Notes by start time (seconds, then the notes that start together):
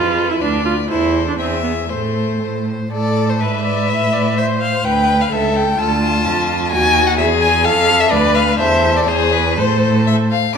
Already playing: F2 F4 A4 B4
0.17 A4
0.31 E4
0.41 D2 D4 B4 D5
0.65 F4 B4
0.90 E2 E4 A4 C5
1.14 A4
1.28 D4
1.39 E2 C4 G#4 E5
1.64 B3 G#4
1.89 A2 A3 C5
2.15 C5
2.42 A2 C5
2.68 C5
2.92 A2 A4 D5
3.29 C5
3.40 G#2 B4 E5
3.65 D5
3.89 A2 E5
4.13 D5
4.38 C5 E5
4.61 F5
4.85 D2 B4 G5
5.21 F5
5.32 C#2 A4 E5
5.56 G5
5.79 D2 F4 A4 A5
6.03 F4
6.25 F2
6.71 D#2 F#4 G#5
7.07 F#5
7.17 E2 G#4 E5
7.41 G#5
7.64 F2 A4 F5
8.00 E5
8.11 D2 B4 D5
8.35 F5
8.59 E2 A4 C5 E5
8.97 D5
9.08 E2 G#4 C5
9.32 B4
9.58 A2 A4 C5
10.07 E5
10.31 F5